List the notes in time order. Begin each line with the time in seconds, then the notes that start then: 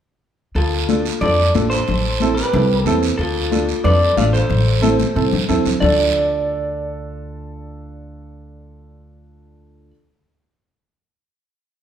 0.55 D2 F4 A4, high conga, long guiro
0.88 D4 F4 A4, high conga, short guiro
1.05 short guiro
1.21 F2 D4 F4 A4 D5, high conga, low conga, long guiro
1.55 A1 D4 F4 A4, high conga, short guiro
1.70 A4 C5, short guiro
1.88 A1, high conga, low conga, long guiro
2.20 C4 E4 A4, high conga, short guiro
2.35 G4 B4, short guiro
2.53 C2 C4 E4 A4, high conga, low conga, long guiro
2.82 E2 C4 A4
2.86 E4 A4, high conga, short guiro
3.03 short guiro
3.18 D2 F4 A4, high conga, long guiro
3.51 D4 F4 A4, high conga, short guiro
3.69 short guiro
3.84 F2 D4 F4 A4 B4 D5, high conga, low conga, long guiro
4.17 A1 D4 F4 A4 D5 F5, high conga, short guiro
4.33 A4 C5, short guiro
4.49 A1, high conga, low conga, long guiro
4.81 C4 E4 A4, high conga, short guiro
5.00 high conga, short guiro
5.15 C2 C4 E4 A4, long guiro
5.33 G2, low conga
5.48 E2 C4 E4 A4, low conga, short guiro
5.65 D2, low conga, short guiro
5.80 D2 D4 F4 A4 D5, low conga, long guiro